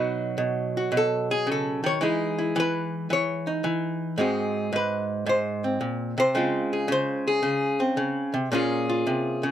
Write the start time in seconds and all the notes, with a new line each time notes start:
Already playing: B2 F#3 D#4 F#4 B4
0.38 B2
0.77 F#4
0.92 B2
0.97 A4
1.31 G#4
1.47 C#3
1.52 A4
1.84 D#3 C#5
2.01 E3 G#3 D#4 E4 G#4
2.38 E4
2.56 E3 B4
3.10 E3 C#5
3.47 D#4
3.64 E3
4.18 G#2 G#3 C4 F#4 G#4
4.73 G#2 B4
5.26 G#2 C5
5.64 C4
5.81 A#2
6.18 C3 C5
6.35 C#3 G#3 C4 F4
6.73 G#4
6.88 C#3
6.92 C5
7.28 G#4
7.43 C#3
7.80 C4
7.97 C#3
8.34 C3
8.52 A#2 A#3 C#4 F4 G#4
8.89 F4
9.07 C3
9.43 C#3